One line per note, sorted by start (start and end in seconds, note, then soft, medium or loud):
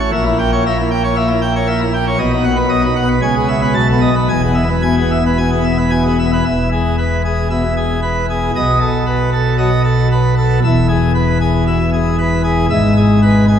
0.00 0.10 C#5 medium
0.12 2.16 A#1 medium
0.12 2.16 A#2 medium
0.12 0.24 E5 medium
0.26 0.37 E4 medium
0.39 0.50 G5 medium
0.52 0.63 C#5 medium
0.66 0.81 A#3 medium
0.66 0.77 E5 medium
0.78 0.89 E4 medium
0.91 1.02 G5 medium
1.04 1.15 C#5 medium
1.16 1.31 A#3 medium
1.16 1.28 E5 medium
1.28 1.40 E4 medium
1.42 1.54 G5 medium
1.56 1.67 C#5 medium
1.67 1.83 A#3 medium
1.67 1.79 E5 medium
1.81 1.92 E4 medium
1.94 2.05 G5 medium
2.07 2.18 C#5 medium
2.18 3.20 B1 medium
2.18 3.20 B2 medium
2.18 2.31 D#5 medium
2.32 2.44 D#4 medium
2.36 2.52 B3 medium
2.44 2.56 F#5 medium
2.56 2.69 B4 medium
2.69 2.86 F#3 medium
2.69 2.82 D#5 medium
2.82 2.94 D#4 medium
2.86 3.03 B3 medium
2.96 3.08 F#5 medium
3.08 3.20 B4 medium
3.22 3.74 C#2 medium
3.22 3.74 C#3 medium
3.22 3.35 G#5 medium
3.35 3.48 G#4 medium
3.40 3.56 B3 medium
3.48 3.61 E5 medium
3.62 3.74 B4 medium
3.74 4.28 B1 medium
3.74 4.28 B2 medium
3.74 3.87 A5 medium
3.88 4.01 A4 medium
3.92 4.09 B3 medium
4.01 4.14 D#5 medium
4.16 4.28 B4 medium
4.29 6.41 E1 medium
4.29 6.42 E2 medium
4.29 4.42 G#5 medium
4.41 4.54 G#4 medium
4.47 4.64 B3 medium
4.54 4.68 E5 medium
4.68 4.82 B4 medium
4.82 5.00 B2 medium
4.82 4.95 G#5 medium
4.97 5.09 G#4 medium
5.01 5.18 B3 medium
5.11 5.23 E5 medium
5.26 5.38 B4 medium
5.37 5.54 B2 medium
5.37 5.50 G#5 medium
5.51 5.63 G#4 medium
5.56 5.72 B3 medium
5.64 5.77 E5 medium
5.78 5.90 B4 medium
5.91 6.07 B2 medium
5.91 6.03 G#5 medium
6.04 6.17 G#4 medium
6.08 6.25 B3 medium
6.19 6.31 E5 medium
6.33 6.44 B4 medium
6.44 8.50 E1 medium
6.44 8.50 E2 medium
6.44 6.69 E5 medium
6.73 6.96 G#4 medium
6.98 7.22 B4 medium
7.25 7.48 G#4 medium
7.50 7.63 B2 medium
7.50 7.74 E5 medium
7.77 8.00 G#4 medium
8.03 8.26 B4 medium
8.30 8.51 G#4 medium
8.56 10.59 B1 medium
8.56 10.59 B2 medium
8.56 8.79 D#5 medium
8.80 9.04 A4 medium
9.06 9.30 B4 medium
9.32 9.56 A4 medium
9.58 9.70 F#3 medium
9.58 9.82 D#5 medium
9.84 10.08 A4 medium
10.12 10.34 B4 medium
10.38 10.59 A4 medium
10.64 12.67 E1 medium
10.64 12.67 E2 medium
10.64 10.87 E5 medium
10.89 11.12 G#4 medium
11.15 11.38 B4 medium
11.41 11.64 G#4 medium
11.67 11.79 B2 medium
11.67 11.90 E5 medium
11.93 12.16 G#4 medium
12.19 12.42 B4 medium
12.44 12.66 G#4 medium
12.70 13.59 G#1 medium
12.70 13.59 G#2 medium
12.70 12.93 E5 loud
12.97 13.19 G#4 medium
13.23 13.45 B4 medium
13.48 13.59 G#4 medium